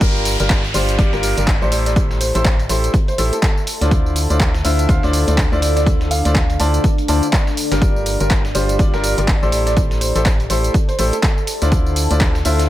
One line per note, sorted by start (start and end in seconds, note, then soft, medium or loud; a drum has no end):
0.01 0.37 G1 loud
0.01 0.34 G3 loud
0.01 0.34 D4 medium
0.01 0.34 F4 medium
0.01 0.34 G4 medium
0.01 2.51 G4 medium
0.01 0.34 A#4 loud
0.01 kick loud
0.01 closed hi-hat medium
0.01 tambourine soft
0.01 downlifter medium
0.16 tambourine soft
0.25 closed hi-hat medium
0.25 open hi-hat loud
0.25 tambourine medium
0.38 0.72 G1 loud
0.38 0.60 G3 medium
0.38 0.60 D4 medium
0.38 0.60 F4 medium
0.38 0.60 G4 medium
0.38 0.60 A#4 medium
0.38 1.72 A#5 medium
0.38 closed hi-hat medium
0.38 tambourine soft
0.50 kick loud
0.50 snare loud
0.50 clap loud
0.50 closed hi-hat medium
0.50 tambourine soft
0.58 2.51 D5 medium
0.64 snare medium
0.64 tambourine soft
0.74 0.97 G1 loud
0.74 0.96 G3 loud
0.74 0.96 D4 medium
0.74 0.96 F4 medium
0.74 0.96 G4 medium
0.74 0.96 C5 loud
0.74 open hi-hat loud
0.74 open hi-hat medium
0.74 tambourine medium
0.89 closed hi-hat medium
0.89 tambourine soft
0.98 1.10 G1 loud
0.98 1.09 G3 loud
0.98 1.09 D4 medium
0.98 1.09 F4 medium
0.98 1.09 G4 medium
0.98 1.09 D5 loud
0.98 kick loud
0.98 closed hi-hat medium
0.98 tambourine soft
1.13 1.35 G1 loud
1.13 1.34 G3 loud
1.13 1.34 D4 medium
1.13 1.34 F4 medium
1.13 1.34 G4 medium
1.13 1.34 A#4 loud
1.13 snare soft
1.13 tambourine soft
1.23 closed hi-hat medium
1.23 open hi-hat loud
1.23 tambourine medium
1.37 1.59 G1 loud
1.37 1.48 G3 medium
1.37 1.48 D4 medium
1.37 1.48 F4 medium
1.37 1.48 G4 medium
1.37 1.48 A#4 medium
1.37 closed hi-hat soft
1.37 closed hi-hat medium
1.37 tambourine soft
1.47 kick loud
1.47 snare loud
1.47 clap loud
1.47 closed hi-hat medium
1.47 tambourine soft
1.62 2.32 A1 loud
1.62 2.31 A3 medium
1.62 2.31 E4 medium
1.62 2.31 G4 medium
1.62 2.31 A4 medium
1.62 2.31 C5 loud
1.62 1.68 D5 medium
1.62 tambourine soft
1.72 7.82 A4 medium
1.72 1.81 D5 medium
1.72 closed hi-hat medium
1.72 open hi-hat loud
1.72 tambourine medium
1.78 3.67 E5 medium
1.86 1.96 D5 medium
1.86 snare soft
1.86 closed hi-hat medium
1.86 tambourine soft
1.96 kick loud
1.96 closed hi-hat medium
1.96 tambourine soft
2.11 snare soft
2.11 tambourine soft
2.21 2.59 C5 medium
2.21 closed hi-hat medium
2.21 open hi-hat loud
2.21 tambourine medium
2.35 2.67 A1 loud
2.35 2.46 A3 medium
2.35 2.46 E4 medium
2.35 2.46 G4 medium
2.35 2.46 A4 medium
2.35 2.46 C5 loud
2.35 closed hi-hat medium
2.35 closed hi-hat soft
2.35 tambourine soft
2.45 kick loud
2.45 snare loud
2.45 clap loud
2.45 closed hi-hat medium
2.45 tambourine soft
2.59 5.34 A5 medium
2.59 4.86 C6 medium
2.59 closed hi-hat soft
2.59 tambourine soft
2.69 2.89 A1 loud
2.69 2.91 A3 medium
2.69 2.91 E4 medium
2.69 2.91 G4 medium
2.69 2.91 A4 medium
2.69 2.91 C5 medium
2.69 closed hi-hat medium
2.69 open hi-hat loud
2.69 tambourine medium
2.84 closed hi-hat medium
2.84 tambourine soft
2.94 kick loud
2.94 closed hi-hat medium
2.94 tambourine soft
3.08 3.18 C5 medium
3.08 closed hi-hat soft
3.08 tambourine soft
3.18 3.31 A1 loud
3.18 3.33 A3 medium
3.18 3.33 E4 medium
3.18 3.33 G4 medium
3.18 3.33 A4 medium
3.18 3.33 C5 loud
3.18 closed hi-hat medium
3.18 open hi-hat loud
3.18 tambourine medium
3.32 3.67 A4 medium
3.32 closed hi-hat medium
3.32 tambourine soft
3.43 kick loud
3.43 snare loud
3.43 clap loud
3.43 closed hi-hat medium
3.43 tambourine soft
3.58 tambourine soft
3.67 8.51 D4 medium
3.67 closed hi-hat medium
3.67 open hi-hat loud
3.67 tambourine medium
3.81 4.27 D2 loud
3.81 4.27 D3 medium
3.81 4.27 E4 medium
3.81 4.27 F4 medium
3.81 4.27 C5 medium
3.81 4.27 D5 medium
3.81 snare soft
3.81 closed hi-hat medium
3.81 tambourine soft
3.91 kick loud
3.91 closed hi-hat medium
3.91 tambourine soft
4.06 tambourine soft
4.16 closed hi-hat medium
4.16 open hi-hat loud
4.16 tambourine medium
4.30 4.62 D2 loud
4.30 4.50 D3 medium
4.30 4.50 E4 medium
4.30 4.50 F4 medium
4.30 4.50 C5 medium
4.30 4.50 D5 medium
4.30 closed hi-hat medium
4.30 tambourine soft
4.40 kick loud
4.40 snare loud
4.40 clap loud
4.40 closed hi-hat medium
4.40 tambourine soft
4.55 snare medium
4.55 tambourine soft
4.64 4.87 D2 loud
4.64 4.86 D3 loud
4.64 4.86 E4 medium
4.64 4.86 F4 medium
4.64 4.86 C5 medium
4.64 4.86 E5 loud
4.64 open hi-hat medium
4.64 open hi-hat loud
4.64 tambourine medium
4.76 8.36 D5 medium
4.76 closed hi-hat medium
4.76 tambourine soft
4.89 5.00 D2 loud
4.89 5.00 D3 loud
4.89 5.00 E4 medium
4.89 5.00 F4 medium
4.89 5.00 C5 medium
4.89 5.00 F5 loud
4.89 kick loud
4.89 closed hi-hat medium
4.89 tambourine soft
5.03 5.25 D2 loud
5.03 5.24 D3 loud
5.03 5.24 E4 medium
5.03 5.24 F4 medium
5.03 5.24 C5 medium
5.03 5.24 D5 loud
5.03 snare medium
5.03 tambourine soft
5.13 closed hi-hat medium
5.13 open hi-hat loud
5.13 tambourine medium
5.28 5.49 D2 loud
5.28 5.39 D3 medium
5.28 5.39 E4 medium
5.28 5.39 F4 medium
5.28 5.39 C5 medium
5.28 5.39 D5 medium
5.28 closed hi-hat soft
5.28 closed hi-hat medium
5.28 tambourine soft
5.38 kick loud
5.38 snare loud
5.38 clap loud
5.38 closed hi-hat medium
5.38 tambourine soft
5.52 6.22 D2 loud
5.52 6.22 D3 medium
5.52 6.22 E4 medium
5.52 6.22 F4 medium
5.52 6.22 C5 medium
5.52 5.58 D5 medium
5.52 6.22 D5 loud
5.52 tambourine soft
5.62 5.71 D5 medium
5.62 closed hi-hat medium
5.62 open hi-hat loud
5.62 tambourine medium
5.76 5.86 D5 medium
5.76 snare soft
5.76 closed hi-hat medium
5.76 tambourine soft
5.86 kick loud
5.86 closed hi-hat medium
5.86 closed hi-hat soft
5.86 tambourine soft
6.01 snare soft
6.01 tambourine soft
6.11 6.58 F5 medium
6.11 closed hi-hat medium
6.11 open hi-hat loud
6.11 tambourine medium
6.25 6.58 D2 loud
6.25 6.36 D3 medium
6.25 6.36 E4 medium
6.25 6.36 F4 medium
6.25 6.36 C5 medium
6.25 6.36 D5 loud
6.25 closed hi-hat soft
6.25 closed hi-hat medium
6.25 tambourine soft
6.35 kick loud
6.35 snare loud
6.35 clap loud
6.35 closed hi-hat medium
6.35 tambourine soft
6.50 closed hi-hat soft
6.50 tambourine soft
6.60 6.79 D2 loud
6.60 6.81 D3 medium
6.60 6.81 E4 medium
6.60 6.81 F4 medium
6.60 6.81 C5 medium
6.60 6.81 D5 loud
6.60 7.06 A5 medium
6.60 closed hi-hat medium
6.60 open hi-hat loud
6.60 tambourine medium
6.74 closed hi-hat medium
6.74 tambourine soft
6.84 kick loud
6.84 closed hi-hat medium
6.84 closed hi-hat soft
6.84 tambourine soft
6.98 closed hi-hat soft
6.98 tambourine soft
7.08 7.21 D2 loud
7.08 7.24 D3 medium
7.08 7.24 E4 medium
7.08 7.24 F4 medium
7.08 7.24 C5 medium
7.08 7.24 D5 loud
7.08 7.47 A5 medium
7.08 closed hi-hat medium
7.08 open hi-hat loud
7.08 tambourine medium
7.23 closed hi-hat medium
7.23 tambourine soft
7.33 kick loud
7.33 snare loud
7.33 clap loud
7.33 closed hi-hat medium
7.33 tambourine soft
7.47 snare medium
7.47 tambourine soft
7.57 open hi-hat medium
7.57 open hi-hat loud
7.57 tambourine medium
7.72 8.17 G1 loud
7.72 8.17 G3 medium
7.72 8.17 D4 medium
7.72 8.17 F4 medium
7.72 8.17 G4 medium
7.72 8.17 A#4 medium
7.72 snare loud
7.72 closed hi-hat medium
7.72 tambourine soft
7.81 10.31 G4 medium
7.81 kick loud
7.81 closed hi-hat soft
7.81 closed hi-hat medium
7.81 tambourine soft
7.96 tambourine soft
8.06 closed hi-hat medium
8.06 open hi-hat loud
8.06 tambourine medium
8.20 8.53 G1 loud
8.20 8.41 G3 medium
8.20 8.41 D4 medium
8.20 8.41 F4 medium
8.20 8.41 G4 medium
8.20 8.41 A#4 medium
8.20 closed hi-hat medium
8.20 tambourine soft
8.30 9.52 A#5 medium
8.30 kick loud
8.30 snare loud
8.30 clap loud
8.30 closed hi-hat medium
8.30 tambourine soft
8.37 10.31 D5 medium
8.45 snare medium
8.45 tambourine soft
8.55 8.77 G1 loud
8.55 8.77 G3 loud
8.55 8.77 D4 medium
8.55 8.77 F4 medium
8.55 8.77 G4 medium
8.55 8.77 C5 loud
8.55 open hi-hat medium
8.55 open hi-hat loud
8.55 tambourine medium
8.69 closed hi-hat medium
8.69 tambourine soft
8.79 8.91 G1 loud
8.79 8.90 G3 medium
8.79 8.90 D4 medium
8.79 8.90 F4 medium
8.79 8.90 G4 medium
8.79 8.90 D5 loud
8.79 kick loud
8.79 closed hi-hat medium
8.79 tambourine soft
8.94 9.15 G1 loud
8.94 9.14 G3 medium
8.94 9.14 D4 medium
8.94 9.14 F4 medium
8.94 9.14 G4 medium
8.94 9.14 A#4 loud
8.94 snare soft
8.94 tambourine soft
9.04 closed hi-hat medium
9.04 open hi-hat loud
9.04 tambourine medium
9.18 9.39 G1 loud
9.18 9.29 G3 medium
9.18 9.29 D4 medium
9.18 9.29 F4 medium
9.18 9.29 G4 medium
9.18 9.29 A#4 medium
9.18 closed hi-hat soft
9.18 closed hi-hat medium
9.18 tambourine soft
9.28 kick loud
9.28 snare loud
9.28 clap loud
9.28 closed hi-hat medium
9.28 tambourine soft
9.42 10.13 A1 loud
9.42 10.12 A3 medium
9.42 10.12 E4 medium
9.42 10.12 G4 medium
9.42 10.12 A4 medium
9.42 10.12 C5 loud
9.42 9.49 D5 medium
9.42 tambourine soft
9.52 12.69 A4 medium
9.52 9.61 D5 medium
9.52 closed hi-hat medium
9.52 open hi-hat loud
9.52 tambourine medium
9.61 11.47 E5 medium
9.67 9.76 D5 medium
9.67 snare soft
9.67 closed hi-hat medium
9.67 tambourine soft
9.77 kick loud
9.77 closed hi-hat medium
9.77 tambourine soft
9.91 snare soft
9.91 tambourine soft
9.97 12.03 A5 medium
10.01 10.40 C5 loud
10.01 closed hi-hat medium
10.01 open hi-hat loud
10.01 tambourine medium
10.15 10.48 A1 loud
10.15 10.27 A3 medium
10.15 10.27 E4 medium
10.15 10.27 G4 medium
10.15 10.27 A4 medium
10.15 10.27 C5 loud
10.15 closed hi-hat soft
10.15 closed hi-hat medium
10.15 tambourine soft
10.25 kick loud
10.25 snare loud
10.25 clap loud
10.25 closed hi-hat medium
10.25 tambourine soft
10.40 12.69 C6 medium
10.40 closed hi-hat soft
10.40 tambourine soft
10.50 10.69 A1 loud
10.50 10.71 A3 medium
10.50 10.71 E4 medium
10.50 10.71 G4 medium
10.50 10.71 A4 medium
10.50 10.71 C5 loud
10.50 closed hi-hat medium
10.50 open hi-hat loud
10.50 tambourine medium
10.64 closed hi-hat medium
10.64 tambourine soft
10.74 kick loud
10.74 closed hi-hat medium
10.74 tambourine soft
10.89 10.98 C5 medium
10.89 closed hi-hat soft
10.89 tambourine soft
10.99 11.11 A1 loud
10.99 11.14 A3 medium
10.99 11.14 E4 medium
10.99 11.14 G4 medium
10.99 11.14 A4 medium
10.99 11.14 C5 loud
10.99 closed hi-hat medium
10.99 open hi-hat loud
10.99 tambourine medium
11.13 11.47 A4 medium
11.13 closed hi-hat medium
11.13 tambourine soft
11.23 kick loud
11.23 snare loud
11.23 clap loud
11.23 closed hi-hat medium
11.23 tambourine soft
11.38 tambourine soft
11.47 12.69 D4 medium
11.47 closed hi-hat medium
11.47 open hi-hat loud
11.47 tambourine medium
11.62 12.08 D2 loud
11.62 12.07 D3 medium
11.62 12.07 E4 medium
11.62 12.07 F4 medium
11.62 12.07 C5 medium
11.62 12.07 D5 medium
11.62 snare soft
11.62 closed hi-hat medium
11.62 tambourine soft
11.72 kick loud
11.72 closed hi-hat medium
11.72 tambourine soft
11.86 tambourine soft
11.96 closed hi-hat medium
11.96 open hi-hat loud
11.96 tambourine medium
12.04 12.69 A5 medium
12.11 12.43 D2 loud
12.11 12.31 D3 medium
12.11 12.31 E4 medium
12.11 12.31 F4 medium
12.11 12.31 C5 medium
12.11 12.31 D5 medium
12.11 closed hi-hat medium
12.11 tambourine soft
12.21 kick loud
12.21 snare loud
12.21 clap loud
12.21 closed hi-hat medium
12.21 tambourine soft
12.35 snare medium
12.35 tambourine soft
12.45 12.67 D2 loud
12.45 12.67 D3 loud
12.45 12.67 E4 loud
12.45 12.67 F4 medium
12.45 12.67 C5 medium
12.45 12.67 E5 loud
12.45 open hi-hat medium
12.45 open hi-hat loud
12.45 tambourine medium
12.59 snare soft
12.59 closed hi-hat medium
12.59 tambourine soft